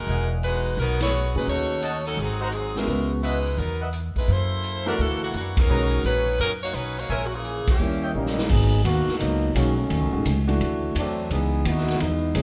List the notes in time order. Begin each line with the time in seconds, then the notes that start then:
Already playing: F#4 A#4
0.00 G#3 D#4
0.07 E1 D#5 E5 F#5 G#5, kick, open hi-hat
0.43 G#3 D#4 F#4 B4, closed hi-hat
0.66 open hi-hat
0.77 B1 F#3 B3 D#4 A#4, kick, open hi-hat
1.00 B3 F#4 G#4 C#5, snare, ride
1.35 A#2 G#3 C#4 D#4 F#4 G#4 B4
1.47 D#2 A3 D#4 F#4 C#5, kick, open hi-hat
1.82 C#5 D#5 F#5 A5, closed hi-hat
2.05 F#3 C#4 D#4 A4, open hi-hat
2.17 G#1 F#3 C4 D#4 G#4, kick, open hi-hat
2.41 D#3 G#3 C4 F#4 C5 D#5 F#5 A#5
2.52 F#3 C4 D#4 G#4, closed hi-hat
2.75 G#3 B3 C#4 D#4 E4 F#4 A#4, snare
2.87 C#2 G#3 C#4 F#4 B4, kick, open hi-hat
3.23 G#3 D#4 E4 B4 D#5 E5 F#5, closed hi-hat
3.46 open hi-hat
3.57 E2 F#3 B3 D#4 A#4, kick, open hi-hat
3.81 B4 D#5 E5 F#5
3.93 closed hi-hat
4.15 G#3 D#4 E4 B4, muted upright bass stroke, kick, open hi-hat
4.28 F#2 A#3 E4 A4 C5, kick, open hi-hat
4.63 closed hi-hat
4.86 E3 A3 D4 F#4 A#4 D5 E5 F#5, open hi-hat
4.99 D2 E3 A#3 D4 A4, kick, open hi-hat
5.23 E3 A#3 D4 F#4
5.33 F#2 E3 A#3 D4 F#4, closed hi-hat
5.57 F#3 C#4 D#4 A#4, kick, ride
5.68 B1 D#3 G#3 C#4 F#4 B4 C#5 D#5 A#5
6.04 A#1 F#3 C#4 D#4 B4, closed hi-hat
6.28 open hi-hat
6.39 F#2 F#3 C#4 D#4 A#4, kick, open hi-hat
6.63 A#3 D#4 F#4 C#5
6.74 B1 F#3 C#4 D#4 B4, closed hi-hat
6.97 A#3 D#4 F#4 C#5, open hi-hat
7.09 A#1 G#3 C#4 E4 A#4 C#5 E5 G#5, kick, open hi-hat
7.26 F#4
7.34 E3 A#3 C#4 G#4
7.44 closed hi-hat
7.67 A#3 C#4 E4 G4, muted upright bass stroke, kick, ride
7.79 D#2 G3 A#3 C#4 E4
8.03 C#5 D#5 E5 G5
8.14 A#1 G3 A#3 C#4 D#4
8.26 snare
8.38 snare
8.49 G#1 F#3 B3 D#4 G#4, kick, crash
8.84 D#2 D#3 A#3 B3 F#4, kick, hi-hat pedal, ride
9.07 muted upright bass stroke, snare
9.18 C#2 F#3 A#3 B3 D#4, kick, ride
9.54 B1 D#3 F#3 G#3 A#3 C#4 F#4, kick, hi-hat pedal, ride
9.76 D#3 F#3 A3 C#4
9.90 D#2, kick, ride
10.01 C#2
10.12 A1 D#3 G#3 C#4 F#4
10.25 C#2, kick, hi-hat pedal, ride
10.47 E3 A3 D4 F#4, ride
10.60 D2, kick, ride
10.95 E2 F#3 A3 C4 D4, kick, hi-hat pedal, ride
11.30 C#2 E3 B3 D#4 G#4, kick, ride
11.65 D#2 B3 D#4 E4 F#4, kick, hi-hat pedal, ride
11.77 snare
11.88 snare, ride
12.00 E2 E3 G#3 B3 D#4, kick, ride
12.34 C#2 E3 F#3 G#3 B3 C#4 E4 G#4, kick, hi-hat pedal, ride